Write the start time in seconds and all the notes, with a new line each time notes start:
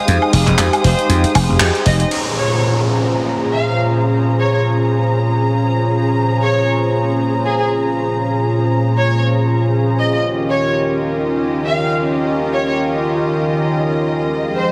Already playing: G#3 F5 D#6
0.06 F2 D#4 G4 G#4 C5, closed hi-hat
0.22 high woodblock
0.33 F1, open hi-hat
0.47 F1, clap, closed hi-hat
0.58 F2, clap, closed hi-hat
0.73 closed hi-hat, high woodblock
0.83 F1 D#4 G4 G#4 C5, open hi-hat
0.99 closed hi-hat
1.09 F2, closed hi-hat
1.23 muted slap bass stroke, closed hi-hat
1.35 F1, open hi-hat, high woodblock
1.48 F1 D#4 G4 G#4 C5
1.60 F2, clap, closed hi-hat
1.75 closed hi-hat
1.86 F1 D#5, open hi-hat
2.00 D#5, closed hi-hat
2.10 A#2 C#4 F4 G#4 C5 A#5, crash, downlifter
2.36 C#5
3.52 F5
4.39 C#5
4.54 C#5
6.17 A#2 C#4 F4 G#4 C5
6.43 C#5
7.45 G#4
7.59 G#4
8.98 C#5
9.99 D#5
10.13 D#5
10.24 D#3 C#4 F4 G4 A#4 D#5
10.50 C#5
11.66 F5
12.53 C#5
12.67 C#5
14.31 F3 G#3 D#4 G4 G#4 C5
14.57 C5